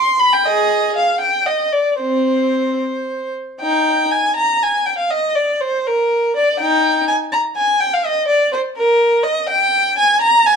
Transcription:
Already playing: C6
0.19 B5
0.33 G5
0.46 G#4 D#5
0.96 F5
1.21 G5
1.46 D#5
1.72 D5
2.00 C4 C5
3.61 D#4 G5
4.11 G#5
4.36 A#5
4.62 G#5
4.86 G5
4.98 F5
5.10 D#5
5.35 D5
5.61 C5
5.87 A#4
6.36 D5
6.60 D#4 G5
7.08 G#5
7.32 A#5
7.57 G#5
7.80 G5
7.94 F5
8.05 D#5
8.28 D5
8.52 C5
8.77 A#4
9.23 D#5
9.49 G5
9.98 G#5
10.21 A#5
10.46 G#5

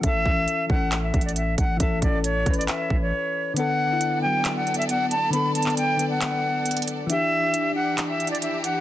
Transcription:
0.01 A1 E3 C#4 E5, kick, closed hi-hat
0.07 A4
0.26 A1, kick
0.34 E3 C#4
0.40 A4
0.48 closed hi-hat
0.66 A1 E3 C#4 F#5, kick
0.72 A4
0.92 clap, closed hi-hat
1.03 E5
1.14 A1, kick, closed hi-hat
1.21 D5, closed hi-hat
1.29 closed hi-hat
1.36 E5, closed hi-hat
1.58 A1 F#5, kick, closed hi-hat
1.77 A1 E3 C#4 E5, kick, closed hi-hat
1.83 A4
2.02 A1 D5, kick, closed hi-hat
2.10 E3 C#4
2.16 A4
2.24 C#5, closed hi-hat
2.44 A1 E3 C#4, kick, closed hi-hat
2.50 B4, closed hi-hat
2.58 D5, closed hi-hat
2.68 E5, clap, closed hi-hat
2.90 A1, kick
3.02 C#5
3.54 D3 B3 A4 D5 F#5, closed hi-hat
3.59 A4
3.87 D3 B3
3.92 E4
4.01 closed hi-hat
4.20 D3 B3 G5
4.25 F#3
4.45 clap, closed hi-hat
4.56 F#5
4.67 closed hi-hat
4.74 E5, closed hi-hat
4.82 closed hi-hat
4.89 F#5, closed hi-hat
5.11 A5, closed hi-hat
5.30 D3 B3 B5, closed hi-hat
5.36 A4
5.55 A5, closed hi-hat
5.62 D3, clap, closed hi-hat
5.67 B3 A4, closed hi-hat
5.77 G5, closed hi-hat
5.96 D3 B3, closed hi-hat
6.02 A4
6.10 F#5
6.21 clap, closed hi-hat
6.66 closed hi-hat
6.71 closed hi-hat
6.77 closed hi-hat
6.82 closed hi-hat
6.88 closed hi-hat
7.07 E3 D4 G4 E5, closed hi-hat
7.13 G4
7.40 E3 D4
7.46 G4
7.54 closed hi-hat
7.72 E3 D4 F#5
7.78 G4
7.98 clap, closed hi-hat
8.09 E5
8.20 closed hi-hat
8.27 D5, closed hi-hat
8.35 closed hi-hat
8.42 E5, closed hi-hat
8.64 F#5, closed hi-hat

